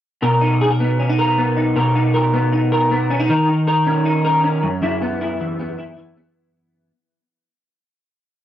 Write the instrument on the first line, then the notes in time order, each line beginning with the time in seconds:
clean electric guitar
0.22 B2 A#4
0.41 D#4
0.61 G#4
0.70 A#4
0.80 B3
0.99 C#4
1.09 D#4
1.19 A#4
1.38 B3
1.57 D#4
1.76 B2 A#4
1.95 D#4
2.14 A#4
2.34 B3
2.52 D#4
2.72 A#4
2.91 B3
3.10 C#4
3.20 D#4
3.29 D#3 A#4
3.49 D#4
3.68 A#4
3.87 C#4
4.06 D#4
4.25 A#4
4.44 C#4
4.63 F#2
4.82 F#2 E4
5.02 B3
5.21 E4
5.40 E3
5.60 B3
5.79 E4
5.98 E3
6.17 B3